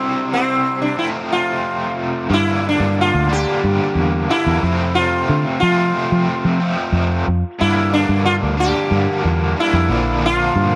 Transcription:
0.00 0.96 C3 medium
0.00 0.96 G3 medium
0.00 0.32 C4 medium
0.00 0.97 C4 medium
0.00 0.97 E4 medium
0.33 0.81 C4 medium
0.82 0.98 D4 medium
0.96 2.28 F2 medium
0.96 2.29 C3 medium
0.96 2.30 F3 medium
0.96 2.30 A3 medium
0.96 2.30 C4 medium
0.96 1.08 E4 medium
1.32 1.95 F4 medium
2.30 3.28 G2 medium
2.30 2.75 G2 medium
2.30 3.28 D3 medium
2.30 3.29 G3 medium
2.30 3.29 A#3 medium
2.30 3.28 D4 medium
2.34 2.67 E4 medium
2.69 3.01 D4 medium
2.80 3.10 G2 medium
3.01 3.30 F4 medium
3.14 3.44 D2 medium
3.29 4.27 G2 medium
3.29 4.28 D3 medium
3.29 4.28 G3 medium
3.29 4.28 A#3 medium
3.29 4.28 D4 medium
3.29 4.34 G4 loud
3.64 3.79 G2 medium
3.95 4.26 E2 medium
4.29 4.61 G2 medium
4.29 4.61 D3 medium
4.29 4.62 G3 medium
4.29 4.62 A#3 medium
4.29 4.62 D4 medium
4.29 4.93 E4 medium
4.46 4.62 E2 medium
4.61 5.59 F2 medium
4.61 5.22 F2 medium
4.61 5.60 C3 medium
4.61 5.60 F3 medium
4.61 5.61 A3 loud
4.61 5.61 C4 medium
4.95 5.59 F4 medium
5.29 5.44 D3 medium
5.60 6.59 F2 medium
5.60 6.59 C3 medium
5.60 5.92 F3 medium
5.60 6.60 F3 medium
5.60 6.89 F4 medium
5.64 6.60 A3 medium
5.64 6.59 C4 medium
6.12 6.27 F3 medium
6.45 6.74 F3 medium
6.60 7.26 C3 medium
6.60 7.26 F3 medium
6.60 7.26 A3 medium
6.60 7.25 C4 medium
6.64 7.27 F2 medium
6.92 7.23 F2 medium
7.28 7.42 F2 medium
7.59 8.56 G2 medium
7.59 8.05 G2 medium
7.59 8.57 D3 medium
7.59 8.58 G3 medium
7.59 8.58 A#3 medium
7.59 7.93 E4 medium
7.64 8.57 D4 medium
7.94 8.25 D4 medium
8.09 8.39 G2 loud
8.26 8.34 F4 loud
8.43 8.72 D2 medium
8.57 9.56 D3 medium
8.57 9.56 G3 medium
8.57 9.59 A#3 medium
8.57 9.59 D4 medium
8.57 9.26 G4 loud
8.61 9.55 G2 medium
8.91 9.06 G2 medium
9.24 9.54 E2 medium
9.24 9.54 F4 loud
9.56 9.88 G2 medium
9.56 9.88 D3 medium
9.56 9.89 G3 medium
9.56 9.91 A#3 medium
9.56 9.93 D4 medium
9.56 10.25 E4 medium
9.73 9.88 F2 medium
9.89 10.49 A#1 medium
9.89 10.76 A#2 medium
9.89 10.76 D3 medium
9.89 10.76 F3 medium
9.89 10.76 A#3 medium
9.89 10.76 D4 loud
10.26 10.76 F4 loud
10.55 10.71 G2 medium

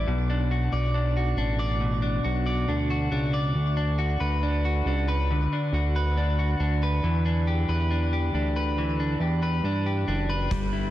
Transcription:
0.00 0.16 G3 medium
0.00 0.16 E4 medium
0.00 0.51 B4 soft
0.00 0.72 D5 medium
0.07 0.69 B1 loud
0.07 1.79 B2 medium
0.30 0.94 D4 soft
0.51 1.16 F#4 medium
0.72 1.34 B1 medium
0.72 1.59 D5 medium
0.94 1.37 D4 medium
1.17 2.24 F#4 soft
1.37 2.20 A1 medium
1.37 2.02 D4 medium
1.59 2.46 D5 medium
1.80 3.55 B2 medium
2.02 2.68 D4 medium
2.24 2.66 B1 medium
2.24 2.90 F#4 medium
2.46 3.33 D5 medium
2.68 3.10 D2 loud
2.68 3.11 D4 medium
2.90 3.98 F#4 soft
3.12 3.53 C#2 medium
3.12 3.76 D4 medium
3.34 4.20 D5 medium
3.55 4.17 D2 loud
3.77 4.42 D4 medium
3.99 4.64 F#4 medium
4.20 4.82 D2 medium
4.20 5.08 B4 medium
4.43 4.87 D4 medium
4.65 5.73 F#4 soft
4.85 5.48 C#2 medium
4.85 5.52 D4 medium
5.08 5.95 B4 medium
5.31 8.81 D3 medium
5.53 6.17 D4 medium
5.72 6.55 D2 medium
5.72 6.38 F#4 medium
5.96 6.82 B4 medium
6.17 6.60 D4 medium
6.39 7.12 F#4 soft
6.60 7.01 D2 medium
6.60 7.25 D4 medium
6.83 7.69 B4 medium
7.03 7.65 E2 loud
7.03 8.78 E3 medium
7.26 7.90 D4 medium
7.47 8.12 G4 medium
7.69 8.30 E2 medium
7.69 8.56 B4 medium
7.91 8.34 D4 medium
8.13 9.21 G4 medium
8.34 9.17 D2 medium
8.34 8.99 D4 soft
8.56 9.42 B4 medium
8.78 10.50 E3 medium
9.00 9.64 D4 medium
9.20 9.61 E2 medium
9.20 9.86 G4 soft
9.43 10.29 B4 medium
9.63 10.05 G2 medium
9.63 10.08 D4 medium
9.86 10.90 G4 soft
10.07 10.49 F#1 medium
10.07 10.72 D4 medium
10.30 10.90 B4 medium
10.51 10.90 G1 loud
10.51 10.90 G3 medium
10.51 kick loud
10.51 closed hi-hat medium
10.73 10.90 E4 medium

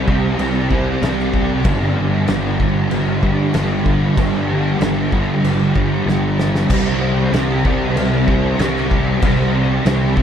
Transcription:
0.00 0.39 C3 medium
0.00 0.10 G3 medium
0.08 0.36 C2 loud
0.08 0.72 G3 medium
0.08 0.69 C4 medium
0.08 kick medium
0.39 0.96 C2 medium
0.39 crash medium
0.70 1.03 G3 medium
0.70 1.03 C4 medium
0.70 kick medium
1.02 1.66 C2 medium
1.02 1.64 C3 medium
1.02 1.67 G3 medium
1.02 1.65 C4 medium
1.02 snare loud
1.02 crash medium
1.19 snare soft
1.34 kick medium
1.64 2.22 G1 loud
1.64 2.27 G2 loud
1.64 1.99 D3 loud
1.64 1.96 G3 loud
1.64 kick loud
1.64 crash medium
1.97 2.28 D3 medium
1.97 2.30 G3 medium
2.28 2.57 G1 medium
2.28 3.54 G2 medium
2.28 2.61 D3 medium
2.28 2.59 G3 medium
2.28 snare loud
2.28 crash medium
2.59 2.88 G1 medium
2.59 3.24 D3 medium
2.59 3.22 G3 medium
2.59 kick medium
2.91 3.49 G1 medium
2.91 crash medium
3.22 3.55 D3 medium
3.22 3.57 G3 medium
3.22 kick medium
3.54 4.12 G1 medium
3.54 4.16 G2 medium
3.54 4.18 D3 medium
3.54 snare loud
3.54 crash medium
3.58 4.20 G3 medium
3.86 kick medium
4.17 4.74 G1 loud
4.17 4.79 G2 loud
4.17 4.51 D3 loud
4.17 4.49 G3 loud
4.17 kick loud
4.17 crash medium
4.50 4.81 D3 medium
4.50 4.82 G3 medium
4.80 5.09 G1 medium
4.80 5.44 G2 medium
4.80 5.14 D3 medium
4.80 5.11 G3 medium
4.80 snare loud
4.80 crash medium
5.12 5.41 G1 medium
5.12 5.77 D3 medium
5.12 5.73 G3 medium
5.12 kick medium
5.43 6.00 G1 medium
5.43 crash medium
5.74 6.07 D3 medium
5.74 6.08 G3 medium
5.74 kick medium
6.06 6.63 G1 medium
6.06 6.69 G2 medium
6.06 6.69 D3 medium
6.06 6.70 G3 medium
6.06 snare medium
6.40 snare loud
6.55 snare medium
6.70 7.27 C2 loud
6.70 7.32 C3 loud
6.70 7.03 G3 loud
6.70 7.00 C4 loud
6.70 kick loud
6.70 crash loud
6.70 crash medium
7.01 7.34 G3 medium
7.01 7.35 C4 medium
7.32 7.61 C2 medium
7.32 8.59 C3 medium
7.32 7.67 G3 medium
7.32 7.64 C4 medium
7.32 snare loud
7.32 crash medium
7.64 7.93 C2 loud
7.64 8.29 G3 medium
7.64 8.25 C4 medium
7.64 kick loud
7.97 8.53 C2 medium
7.97 crash medium
8.27 8.60 G3 medium
8.27 8.60 C4 medium
8.27 kick medium
8.59 9.16 C2 loud
8.59 9.21 C3 medium
8.59 9.23 G3 medium
8.59 9.24 C4 loud
8.59 snare loud
8.59 crash medium
8.77 snare soft
8.91 kick medium
9.22 9.79 C2 loud
9.22 9.83 C3 loud
9.22 9.55 G3 loud
9.22 9.52 C4 loud
9.22 kick loud
9.22 crash medium
9.53 9.85 G3 medium
9.53 9.86 C4 medium
9.84 10.14 C2 loud
9.84 10.22 C3 medium
9.84 10.19 G3 medium
9.84 10.15 C4 medium
9.84 snare loud
9.84 crash medium
10.16 10.22 C2 medium
10.16 10.22 G3 medium
10.16 10.22 C4 medium
10.16 kick loud

